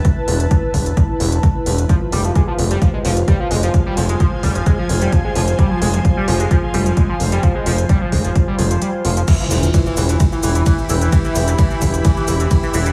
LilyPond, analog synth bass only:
\new Staff \with { instrumentName = "Analog synth bass" } { \clef bass \time 4/4 \key f \lydian \tempo 4 = 130 r8 e,,8 r8 e,,8 r8 e,,8 r8 e,,8 | r8 f,,8 r8 f,,8 r8 f,,8 r8 f,,8 | r8 f,,8 r8 f,,8 r8 f,,8 r8 f,,8 | r8 f,,8 r8 f,,8 r8 f,,8 r8 f,,8 |
r8 f,,8 r8 f,,8 r8 f,,8 r8 f,,8 | r8 e,,8 r8 e,,8 r8 e,,8 r8 e,,8 | r8 e,,8 r8 e,,8 r8 e,,8 r8 e,,8 | }